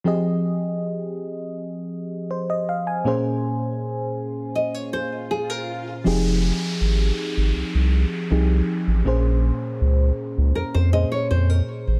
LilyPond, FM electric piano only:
\new Staff \with { instrumentName = "FM electric piano" } { \time 4/4 \key f \minor \tempo 4 = 80 << { r2. c''16 ees''16 f''16 aes''16~ | aes''16 r2. r8. | r1 | r1 | } \\ { <f c' g' aes' ees''>1 | <bes, bes des' aes' c''>1 | <f c' ees' g' aes'>2. <f c' ees' g' aes'>4 | <bes, bes des' aes' c''>2~ <bes, bes des' aes' c''>8 <bes, bes des' aes' c''>4. | } >> }